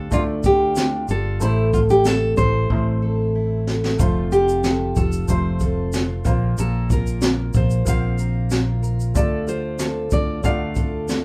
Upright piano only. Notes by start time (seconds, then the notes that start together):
Already playing: A3 F4 D5
0.11 A3 F4 D5
1.40 A3 E4 C5
2.70 A3 E4 C5
3.98 A3 F4 C5
5.28 A3 F4 C5
6.25 A#3 F4 C5
7.85 A#3 F4 C5
9.14 A3 F4 D5
10.44 A3 F4 D5